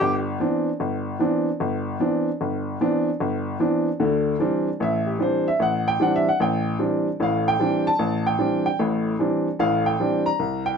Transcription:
Already playing: tenor saxophone G4
0.01 upright piano G1
0.40 upright piano E3 B3 C4 D4
0.80 upright piano G1
1.19 upright piano E3 B3 C4 D4
1.60 upright piano G1
2.00 upright piano E3 B3 C4 D4
2.41 upright piano G1
2.81 upright piano E3 B3 C4 D4
3.20 upright piano G1
3.60 upright piano E3 B3 C4 D4
4.00 upright piano D2 D3
4.39 upright piano E3 G3 C4 D4
4.80 upright piano A1 E5
5.07 upright piano G4
5.19 upright piano E3 G3 C4 D4 C5
5.48 upright piano E5
5.59 upright piano A1 F#5
5.88 upright piano G5
6.00 upright piano E3 G3 C4 D4 F#5
6.16 upright piano E5
6.29 upright piano F#5
6.40 upright piano A1 G5
6.79 upright piano E3 G3 C4 D4
7.20 upright piano A1 A2 F5
7.48 upright piano G5
7.59 upright piano E3 G3 C4 D4
7.87 upright piano A5
7.99 upright piano A1
8.27 upright piano G5
8.39 upright piano E3 G3 C4 D4
8.66 upright piano G5
8.79 upright piano A1 A2
9.19 upright piano E3 G3 C4 D4
9.59 upright piano A1 A2 F5
9.86 upright piano G5
10.00 upright piano E3 G3 C4 D4
10.26 upright piano A#5
10.39 upright piano C2
10.66 upright piano G5

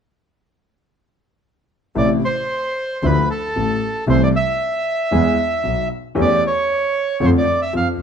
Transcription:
1.95 grand piano A1 A2 C3 E3 A3 E4, double bass A1, bandoneon D5
2.25 bandoneon C5
3.02 grand piano D2 D3 F3 A3 E4, double bass D2, bandoneon B4
3.30 bandoneon A4
3.56 double bass A1, grand piano A1 A2
4.07 double bass C2, grand piano C2 C3 E3 A3 E4, bandoneon C5
4.23 bandoneon D5
4.36 bandoneon E5
5.11 grand piano E2 E3 G#3 B3 G#4, double bass E2
5.63 grand piano B1 B2, double bass B1
6.15 grand piano E2 E3 A3 C#4 G4, double bass E2
6.21 bandoneon D5
6.47 bandoneon C#5
7.20 grand piano F2 D3 F3 A3 C4 F4, double bass F2
7.25 bandoneon C5
7.38 bandoneon D5
7.62 bandoneon E5
7.73 grand piano F2 F3, double bass F2, bandoneon F5

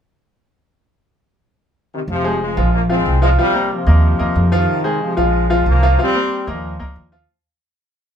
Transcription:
1.94 trombone section C3 D#3
2.08 upright bass F1, trombone section C3 F3
2.24 upright piano G#3 G#4 C5
2.41 trombone section F3 G#3
2.57 upright bass A#1, upright piano F3 F4 F5
2.74 trombone section F3 A#3
2.89 upright piano F3 F4 F5, trombone section G#3 C4
3.06 upright bass C2
3.22 upright piano F3 F4 F5, trombone section F3 G#3
3.38 trombone section C3 G3, upright piano F3 F4 F5
3.54 upright piano A#3 A#4 C5
3.73 trombone section C3 F3
3.87 upright bass D#2, upright piano A#3 A#4 D#5
4.19 upright bass D#2, upright piano A#3 A#4 D#5
4.36 upright bass F2
4.52 trombone section C3 D#3, upright piano F3 F4 F5
4.84 upright piano G#3 G#4 C5
5.02 trombone section C3 F3
5.17 upright bass A#1, upright piano F3 F4 F5, trombone section F3 G#3
5.50 upright piano F3 F4 F5
5.66 upright bass C2, trombone section F3 A#3
5.82 upright piano F3 F4 F5
5.99 upright piano F3 F4 F5, trombone section G3 C4
6.15 upright piano A#3 A#4 C5
6.47 upright bass D#2, trombone section A#2 F3, upright piano A#3 A#4 D#5
6.80 upright bass C#2, upright piano A#3 A#4 D#5
6.96 upright bass D#2
7.12 upright piano F3 F4 F5

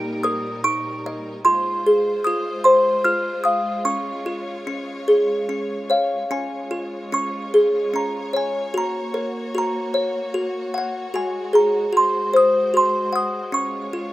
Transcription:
Already playing: string section A#2 G3 D#4 A#4, music box D#4 G4 G5
0.23 music box A#4 D#6
0.64 music box D#4 C#6
1.06 music box D#5
1.45 string section G#3 F4 C5, music box F4 C6
1.86 music box G#4
2.24 music box F4 D#6
2.64 music box C5 C6
3.04 music box F4 F6
3.44 music box F5 D#6
3.85 music box C#4 C#6, string section C#5
4.26 music box F4
4.67 music box C#4
5.08 music box G#4
5.49 music box C#4
5.90 music box C#5 F5
6.30 string section G#3 F4 C#5, music box C#4 G#5
6.71 music box F4
7.12 music box C#4 C#6
7.54 music box G#4
7.94 music box C#4 A#5
8.33 music box C#5 G#5
8.74 string section A#3 F#4, music box F#4 A#5
9.14 music box A#4
9.55 music box F#4 A#5
9.94 music box C#5
10.34 music box F#4
10.74 music box F#5
11.14 string section G#3, music box F#4 G#5
11.53 music box G#4 A#5
11.93 string section G#3 C5, music box F#4
11.97 music box C6
12.34 music box C5 D#6
12.74 music box F#4 C6
13.12 music box F#5 D#6
13.52 music box C#4 C#6, string section F4 C#5
13.93 music box F4

